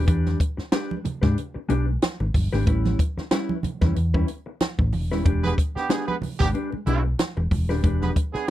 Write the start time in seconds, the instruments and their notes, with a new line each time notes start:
0.07 fingered electric bass E2, clean electric guitar G#3 D4 G4 B4, kick, closed hi-hat
0.26 snare, high conga
0.40 kick, closed hi-hat
0.57 muted clean electric guitar stroke, muted fingered electric bass stroke, snare
0.72 clean electric guitar G#3 D4 G4 B4, snare, closed hi-hat, muted conga
0.91 muted conga, high conga
1.04 muted clean electric guitar stroke, muted fingered electric bass stroke, closed hi-hat, high conga, low conga
1.22 fingered electric bass G#2, clean electric guitar G#3 D4 G4 B4, kick, snare, low conga
1.38 closed hi-hat, muted conga
1.54 muted clean electric guitar stroke, muted fingered electric bass stroke
1.69 fingered electric bass B1, clean electric guitar G#3 D4 G4 B4, closed hi-hat
1.88 muted clean electric guitar stroke
2.02 muted clean electric guitar stroke, snare, closed hi-hat, high conga
2.20 fingered electric bass G#1, muted clean electric guitar stroke, muted conga
2.34 fingered electric bass G1, kick, open hi-hat, high conga, low conga
2.53 fingered electric bass G#1, clean electric guitar G#3 D4 G4 B4, snare
2.67 fingered electric bass A1, clean electric guitar G3 C#4 E4 B4, kick, closed hi-hat
2.85 snare, muted conga, high conga
2.99 kick, closed hi-hat
3.17 muted fingered electric bass stroke, muted clean electric guitar stroke, snare
3.31 clean electric guitar G3 C#4 E4 B4, snare, closed hi-hat, muted conga
3.49 muted conga, high conga
3.63 muted fingered electric bass stroke, muted clean electric guitar stroke, closed hi-hat, high conga, low conga
3.81 fingered electric bass E2, clean electric guitar G3 C#4 E4 B4, kick, snare, low conga
3.96 fingered electric bass E2, muted clean electric guitar stroke, closed hi-hat
4.14 clean electric guitar G3 C#4 E4 B4, kick, muted conga
4.28 muted clean electric guitar stroke, closed hi-hat
4.46 muted clean electric guitar stroke
4.60 muted clean electric guitar stroke, snare, closed hi-hat, high conga
4.79 fingered electric bass A1, muted clean electric guitar stroke, kick, muted conga
4.93 fingered electric bass E1, open hi-hat, high conga, low conga
5.11 fingered electric bass D#1, clean electric guitar G3 C#4 E4 B4, snare
5.25 fingered electric bass E1, clean electric guitar G#3 D4 G4 B4, kick, closed hi-hat, muted conga
5.44 horn section B3 G#4 B4, snare, muted conga, high conga
5.58 kick, closed hi-hat
5.76 horn section B3 D4 G4, muted fingered electric bass stroke, muted clean electric guitar stroke, snare
5.89 clean electric guitar G#3 D4 G4 B4, horn section B3 D4 G#4, snare, closed hi-hat, muted conga
6.08 horn section B3 G#4 B4, muted conga, high conga
6.22 muted clean electric guitar stroke, muted fingered electric bass stroke, open hi-hat, high conga, low conga
6.40 fingered electric bass G#1, clean electric guitar G#3 D4 G4 B4, horn section B3 D4 G4, kick, snare, low conga
6.54 clean electric guitar G#3 D4 G4 B4, closed hi-hat
6.72 muted clean electric guitar stroke, muted fingered electric bass stroke, muted conga
6.86 fingered electric bass B1, horn section G#3 B3 E4, clean electric guitar G#3 D4 G4 B4, closed hi-hat
7.05 muted clean electric guitar stroke
7.19 muted clean electric guitar stroke, snare, closed hi-hat, muted conga, high conga
7.37 fingered electric bass E1, muted clean electric guitar stroke, muted conga
7.51 fingered electric bass E1, kick, open hi-hat, high conga, low conga
7.69 fingered electric bass D#1, clean electric guitar G#3 D4 G4 B4, snare
7.83 fingered electric bass E1, clean electric guitar G#3 D4 G4 B4, kick, closed hi-hat
8.02 horn section B3 G#4 B4, snare, muted conga, high conga
8.16 kick, closed hi-hat
8.34 horn section B3 D4 G#4, muted clean electric guitar stroke, muted fingered electric bass stroke, snare